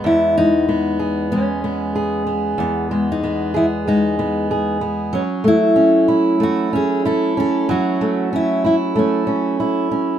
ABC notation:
X:1
M:4/4
L:1/16
Q:"Swing 16ths" 1/4=94
K:E
V:1 name="Steel-string acoustic guitar"
E2 D6 C8 | B,3 D3 E2 D6 z2 | C2 E6 F2 G2 A2 A2 | F4 E2 E2 C4 z4 |]
V:2 name="Steel-string acoustic guitar"
E,,2 G,2 B,2 G2 G,2 B,2 G2 B,2 | E,,2 G,2 B,2 G2 G,2 B,2 G2 B,2 | F,2 A,2 C2 E2 A,2 C2 E2 C2 | F,2 A,2 C2 E2 A,2 C2 E2 C2 |]